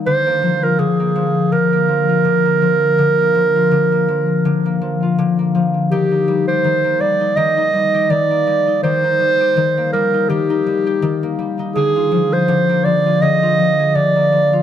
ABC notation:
X:1
M:4/4
L:1/16
Q:"Swing 16ths" 1/4=82
K:Eb
V:1 name="Clarinet"
c3 B A4 B8- | B12 z4 | G3 c3 d2 e4 d4 | c6 B2 G6 z2 |
A3 c3 d2 e4 d4 |]
V:2 name="Harp"
D, B, F, F D, B, F,2 D, B, F, F D, B, F,2 | D, B, F, F D, B, F,2 D, B, F, F D, B, F,2 | [E,G] E G, G E, B, G, E [E,G] E G, G E, B, G, E | [E,G] E G, G E, B, G, E [E,G] E G, G E, B, G, E |
[D,A] F F, A D, B, F, F [D,A] F F, A D, B, F, F |]